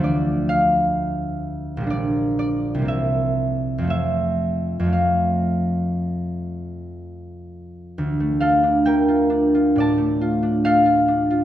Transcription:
<<
  \new Staff \with { instrumentName = "Harp" } { \time 4/4 \key f \major \tempo 4 = 63 << { d''8 f''4. d''8 d''8 e''4 | e''4 f''2.~ | \key d \minor f''8 <a' f''>8 <bes' g''>4 <d'' a''>4 <a' f''>4 | } \\ { r1 | r1 | d,16 a16 f'16 d'16 a16 f'16 d'16 f'16 a,16 a16 f'16 d'16 a16 f'16 d'16 f'16 | } >> }
  \new Staff \with { instrumentName = "Harp" } { \clef bass \time 4/4 \key f \major <d, f a d'>2 <bes,, g bes d'>4 <c, g bes c'>4 | <f, f a c'>4 <f, f a c'>2.~ | \key d \minor <f, f a c'>1 | }
>>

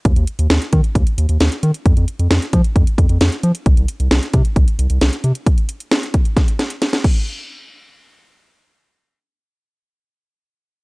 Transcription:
<<
  \new Staff \with { instrumentName = "Analog synth bass" } { \clef bass \time 4/4 \key f \mixolydian \tempo 4 = 133 ees,16 ees,16 r16 ees,16 ees,16 r16 ees16 r16 ees,16 r16 ees,16 ees,16 ees,16 r16 ees16 r16 | f,16 f,16 r16 f,16 f,16 r16 f16 r16 f,16 r16 f,16 f,16 f,16 r16 f16 r16 | c,16 c,16 r16 c,16 c,16 r16 c16 r16 c,16 r16 c,16 c,16 c,16 r16 c16 r16 | r1 |
r1 | r1 | }
  \new DrumStaff \with { instrumentName = "Drums" } \drummode { \time 4/4 <hh bd>16 hh16 hh16 hh16 <hh sn>16 hh16 <hh bd>16 hh16 <hh bd>16 hh16 hh16 hh16 <hh sn>16 hh16 hh16 hh16 | <hh bd>16 hh16 hh16 hh16 <hh sn>16 hh16 <hh bd>16 hh16 <hh bd>16 hh16 <hh bd>16 hh16 <hh sn>16 hh16 hh16 hh16 | <hh bd>16 hh16 hh16 hh16 <hh sn>16 hh16 <hh bd>16 hh16 <hh bd>16 hh16 hh16 hh16 <hh sn>16 hh16 hh16 hh16 | <hh bd>16 hh16 hh16 hh16 <hh sn>16 hh16 <hh bd>16 hh16 <hh bd sn>16 hh16 <hh sn>16 hh16 <hh sn>16 <hh sn>16 <cymc bd>8 |
r4 r4 r4 r4 | r4 r4 r4 r4 | }
>>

